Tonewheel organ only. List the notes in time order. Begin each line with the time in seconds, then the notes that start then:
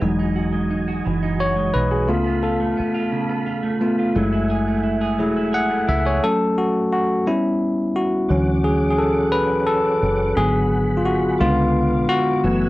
0.01 F#4 D#5 G#5
2.08 A4 F5 B5
4.15 E5 F#5 G#5
8.28 C#4 F#5 D6
10.35 G#4 B5
11.38 B4 F5 D6
12.44 F#5 G#5 E6